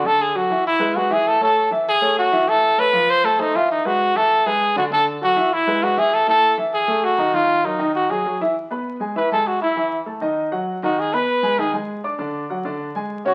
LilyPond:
<<
  \new Staff \with { instrumentName = "Trumpet" } { \time 4/4 \key e \major \tempo 4 = 198 a'8 gis'8 fis'4 e'4 fis'8 gis'8 | a'8 a'4 r8 gis'4 fis'4 | a'4 b'4 c''8 a'8 dis'8 f'8 | dis'8 fis'4 a'4 gis'4 fis'8 |
a'8 r8 fis'4 e'4 fis'8 gis'8 | a'8 a'4 r8 gis'4 fis'4 | eis'4 dis'4 fis'8 gis'4 r8 | r2 b'8 a'8 fis'8 e'8~ |
e'4 r2 r8 fis'8 | gis'8 b'4. gis'8 r4. | r2. r8 fis'8 | }
  \new Staff \with { instrumentName = "Grand piano" } { \time 4/4 \key e \major <d d' d''>4 <fis fis' a'>8 <e e' e''>4 <gis gis' b'>8 <gis gis' b'>8 <e e' e''>8~ | <e e' e''>8 <a a' cis''>4 <e e' e''>4 <a a' cis''>4 <e e' e''>8 | <e e' e''>4 <a a' cis''>8 <eis eis' eis''>4 <a a' c''>8 <a a' c''>8 <e e' e''>8~ | <e e' e''>8 <gis gis' b'>4 <e e' e''>4 <gis gis' b'>4 <d d' d''>8 |
<d d' d''>4 <fis fis' a'>8 <e e' e''>4 <gis gis' b'>8 <gis gis' b'>8 <e e' e''>8~ | <e e' e''>8 <a e' a'>4 <e e' e''>4 <a gis' a'>4 <dis dis' dis''>8 | <dis dis' dis''>4 <fis fis' ais'>8 <dis dis' dis''>4 <fis fis' gis'>8 <fis fis' gis'>8 <e e' e''>8 | r8 <b b' b''>4 <gis gis' gis''>8 <e e' e''>8 <gis gis' gis''>4 <e' e'' e'''>8 |
<e e' e''>4 <a a' a''>8 <dis dis' dis''>4 <fis fis' fis''>4 <dis dis' dis''>8~ | <dis dis' dis''>8 <b b' b''>4 <gis gis' gis''>8 <dis dis' dis''>8 <gis gis' gis''>4 <d' d'' d'''>8 | <d d' d''>4 <fis fis' fis''>8 <d d' d''>4 <gis gis' gis''>4 <cis cis' cis''>8 | }
>>